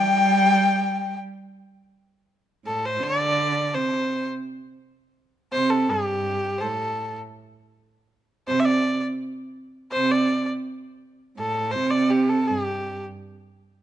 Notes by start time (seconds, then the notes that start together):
Already playing: G3 G5
2.65 A2 A4
2.86 C5
3.01 D3 D5
3.75 C3 C5
5.53 C3 C5
5.70 A4
5.90 G2 G4
6.58 A4 C5
6.63 A2
8.47 C3 C5
8.59 E5
8.65 D5
9.92 C3 C5
10.11 D5
11.38 A2 A4
11.71 C3 C5
11.91 D5
12.10 G4
12.29 A4
12.47 G2 G4